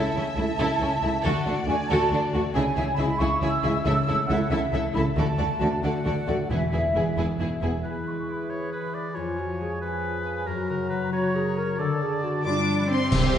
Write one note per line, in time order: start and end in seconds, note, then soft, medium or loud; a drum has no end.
0.00 1.27 C#3 medium
0.00 0.14 E4 medium
0.00 0.37 E4 soft
0.00 0.14 A4 medium
0.00 0.59 E5 soft
0.00 1.22 E5 medium
0.00 1.22 A5 medium
0.14 0.22 C#2 soft
0.14 0.24 C#3 soft
0.14 1.47 A3 soft
0.14 0.24 C#4 soft
0.14 0.23 E4 soft
0.36 0.44 C#2 soft
0.36 0.46 C#3 soft
0.36 0.45 A3 medium
0.36 0.45 E4 medium
0.36 0.45 E4 soft
0.36 1.27 E4 soft
0.58 0.66 C#2 medium
0.58 0.68 C#3 medium
0.58 0.80 E4 medium
0.58 0.79 A4 medium
0.58 1.03 E5 soft
0.80 0.88 C#2 soft
0.80 0.89 C#3 soft
0.80 0.90 C#4 soft
0.80 0.90 E4 soft
0.80 2.11 A4 soft
1.02 1.10 C#2 soft
1.02 1.11 C#3 soft
1.02 1.10 A3 medium
1.02 1.10 E4 medium
1.02 1.11 E4 medium
1.02 1.11 E4 soft
1.02 1.27 E5 soft
1.23 1.32 D2 medium
1.23 1.33 D3 medium
1.23 2.58 D3 medium
1.23 1.46 F#4 medium
1.23 1.44 A4 medium
1.23 2.56 D5 medium
1.23 1.68 F#5 medium
1.45 1.53 D2 soft
1.45 1.55 D3 soft
1.45 2.58 A3 medium
1.45 1.54 D4 medium
1.45 1.56 F#4 soft
1.67 1.75 D2 soft
1.67 1.76 D3 medium
1.67 1.75 A3 medium
1.67 1.75 D4 medium
1.67 2.57 F#4 soft
1.67 1.76 F#4 soft
1.67 1.78 F#4 soft
1.67 1.89 G#5 medium
1.88 1.98 D2 medium
1.88 1.99 D3 medium
1.88 2.11 F#4 medium
1.88 2.11 A4 medium
1.88 2.33 D5 medium
1.88 2.11 A5 medium
2.11 2.19 D2 medium
2.11 2.20 D3 soft
2.11 2.21 D4 medium
2.11 2.21 F#4 soft
2.11 2.57 A4 soft
2.33 2.42 D2 medium
2.33 2.42 D3 soft
2.33 2.42 A3 medium
2.33 2.43 D4 medium
2.33 2.41 F#4 medium
2.33 2.43 F#4 medium
2.33 2.57 D5 medium
2.54 2.63 C#2 medium
2.54 2.63 C#3 medium
2.54 3.83 C#3 medium
2.54 2.64 E4 medium
2.54 2.63 G#4 medium
2.54 2.62 E5 medium
2.54 2.95 G#5 medium
2.76 2.84 C#2 medium
2.76 2.85 C#3 medium
2.76 3.88 G#3 soft
2.76 2.85 E4 medium
2.76 2.84 G#4 soft
2.76 2.84 E5 medium
2.95 3.06 C#2 medium
2.95 3.06 C#3 medium
2.95 3.07 E4 medium
2.95 4.28 E4 medium
2.95 3.06 G#4 medium
2.95 3.05 E5 medium
2.95 3.19 B5 medium
3.01 3.08 G#3 medium
3.01 3.08 E4 medium
3.19 3.28 C#2 medium
3.19 3.27 C#3 medium
3.19 3.28 E4 medium
3.19 3.29 G#4 medium
3.19 3.28 E5 medium
3.19 3.62 E5 medium
3.19 3.42 C#6 medium
3.41 3.49 C#2 medium
3.41 3.50 C#3 medium
3.41 3.50 E4 medium
3.41 3.88 G#4 soft
3.41 3.51 G#4 medium
3.41 3.50 E5 medium
3.41 3.84 E6 medium
3.63 3.71 C#2 medium
3.63 3.71 C#3 medium
3.63 3.72 G#3 medium
3.63 3.72 E4 medium
3.63 3.73 E4 medium
3.63 3.71 G#4 medium
3.63 4.49 E5 medium
3.63 3.72 E5 medium
3.84 3.93 C#2 medium
3.84 5.18 C#3 medium
3.84 3.93 C#3 medium
3.84 3.94 E4 medium
3.84 3.94 A4 medium
3.84 3.94 E5 medium
3.84 4.28 E6 medium
4.06 4.16 C#2 medium
4.06 4.15 C#3 medium
4.06 5.37 A3 medium
4.06 4.16 E4 medium
4.06 4.16 A4 medium
4.06 4.16 E5 medium
4.27 4.38 C#2 medium
4.27 4.37 C#3 medium
4.27 4.38 A3 medium
4.27 5.18 E4 medium
4.27 4.38 E4 medium
4.27 4.38 E5 medium
4.27 4.50 F#5 medium
4.32 4.40 A4 medium
4.50 4.58 C#2 medium
4.50 4.58 C#3 medium
4.50 4.60 E4 medium
4.50 4.61 A4 medium
4.50 4.93 E5 medium
4.50 4.95 E5 medium
4.50 4.59 E5 medium
4.72 4.80 C#2 medium
4.72 4.80 C#3 medium
4.72 4.82 E4 medium
4.72 6.04 A4 medium
4.72 4.83 A4 medium
4.72 4.82 E5 medium
4.94 5.03 C#2 medium
4.94 5.03 C#3 medium
4.94 5.03 A3 medium
4.94 5.02 E4 medium
4.94 5.03 E4 medium
4.94 5.04 A4 medium
4.94 5.18 E5 medium
4.94 5.05 E5 medium
4.94 5.01 B5 medium
5.16 5.24 D2 medium
5.16 6.52 D3 medium
5.16 5.25 D3 medium
5.16 5.24 F#4 medium
5.16 5.26 A4 medium
5.16 5.27 D5 medium
5.16 5.82 A5 medium
5.38 5.47 D2 medium
5.38 5.47 D3 medium
5.38 6.52 A3 soft
5.38 5.46 F#4 soft
5.38 5.48 A4 soft
5.38 5.46 D5 medium
5.59 5.68 D2 medium
5.59 5.69 D3 medium
5.59 5.68 A3 medium
5.59 5.67 F#4 medium
5.59 5.68 F#4 soft
5.59 6.52 F#4 soft
5.59 5.69 A4 soft
5.59 5.69 D5 soft
5.82 5.90 D2 medium
5.82 5.91 D3 medium
5.82 5.92 F#4 soft
5.82 5.92 A4 soft
5.82 6.27 D5 soft
5.82 5.92 D5 medium
5.82 6.49 F#5 medium
6.04 6.12 D2 medium
6.04 6.14 D3 soft
6.04 6.13 F#4 soft
6.04 6.52 A4 soft
6.04 6.14 A4 soft
6.04 6.14 D5 soft
6.27 6.36 D2 medium
6.27 6.36 D3 medium
6.27 6.35 A3 medium
6.27 6.36 F#4 medium
6.27 6.36 F#4 soft
6.27 6.35 A4 soft
6.27 6.36 D5 soft
6.27 6.52 D5 soft
6.50 6.58 E1 medium
6.50 7.14 E2 medium
6.50 6.59 E2 medium
6.50 7.83 E3 soft
6.50 6.59 E4 soft
6.50 6.59 G#4 medium
6.50 6.59 B4 soft
6.50 7.19 E5 medium
6.72 6.81 E1 soft
6.72 6.81 E2 soft
6.72 6.80 E4 soft
6.72 8.28 E4 soft
6.72 6.81 G#4 soft
6.72 6.82 B4 soft
6.95 7.03 E1 soft
6.95 7.04 E2 soft
6.95 7.03 B3 medium
6.95 7.03 E4 soft
6.95 7.03 G#4 medium
6.95 7.05 G#4 soft
6.95 7.04 B4 soft
6.95 8.49 B4 soft
7.17 7.25 E1 medium
7.17 7.25 E2 medium
7.17 7.26 E4 soft
7.17 7.61 G#4 soft
7.17 7.26 G#4 soft
7.17 7.27 B4 soft
7.39 7.47 E1 soft
7.39 7.49 E2 soft
7.39 7.48 E4 soft
7.39 7.49 G#4 soft
7.39 7.49 B4 soft
7.39 9.18 E5 soft
7.61 7.69 E1 soft
7.61 7.70 E2 medium
7.61 7.70 B3 soft
7.61 7.70 E4 soft
7.61 8.71 G#4 soft
7.61 7.71 G#4 medium
7.61 7.71 G#4 soft
7.61 7.71 B4 soft
7.83 9.12 E3 soft
7.83 9.18 E3 soft
7.83 9.17 G#4 soft
7.83 8.51 B4 soft
7.83 8.05 B5 soft
8.07 9.59 G#3 soft
8.07 8.29 C#6 soft
8.29 9.18 E4 soft
8.29 9.17 B5 soft
8.50 8.93 B4 soft
8.50 8.71 C#5 soft
8.72 10.48 G#4 soft
8.72 8.96 B4 soft
8.94 10.03 B4 soft
8.94 9.17 D5 soft
9.15 10.48 F2 soft
9.15 10.44 F3 soft
9.15 9.40 F4 soft
9.15 9.81 C#5 soft
9.15 9.81 G#5 soft
9.38 10.48 F3 soft
9.38 9.64 F#4 soft
9.61 10.49 G#3 soft
9.61 10.49 G#4 medium
9.81 10.24 C#4 soft
9.81 10.48 B4 soft
9.81 10.46 G#5 soft
10.04 10.49 B4 soft
10.26 11.11 C#4 soft
10.47 11.80 F#2 soft
10.47 11.79 F#3 medium
10.47 11.12 F#4 medium
10.47 10.69 A#4 medium
10.47 11.79 A#5 medium
10.69 11.80 C#3 soft
10.69 10.89 A#4 medium
10.90 12.47 F#3 soft
10.90 11.12 B4 medium
11.12 11.55 C#4 soft
11.12 11.37 F#4 medium
11.12 11.81 C#5 medium
11.35 11.60 G#4 medium
11.35 11.81 A#4 soft
11.56 11.80 C#4 soft
11.56 11.80 A#4 medium
11.77 12.44 D3 medium
11.77 12.47 D3 medium
11.77 12.04 A4 medium
11.77 12.45 D5 medium
11.77 12.44 A5 medium
12.01 12.22 D4 soft
12.01 12.25 G#4 medium
12.23 12.88 D4 soft
12.23 12.45 F#4 medium
12.23 12.47 A4 soft
12.43 13.14 G2 medium
12.43 12.90 G3 medium
12.43 12.87 D4 medium
12.43 12.89 F4 medium
12.43 12.86 D5 medium
12.43 12.89 D5 soft
12.43 12.90 B5 soft
12.43 12.87 D6 medium
12.67 13.14 F3 soft
12.88 13.38 C4 medium
12.88 13.14 D4 soft
12.88 13.14 B4 soft
12.88 13.38 C5 medium
12.88 13.38 C6 medium
13.11 13.38 C2 medium
13.11 13.38 C3 medium
13.11 13.32 C4 medium
13.11 13.38 C4 medium
13.11 13.32 G4 medium
13.11 13.38 G4 medium
13.11 13.38 E5 medium
13.11 concert bass drum medium
13.11 crash medium
13.34 13.38 G3 medium
13.34 13.38 E4 medium
13.34 13.38 C5 medium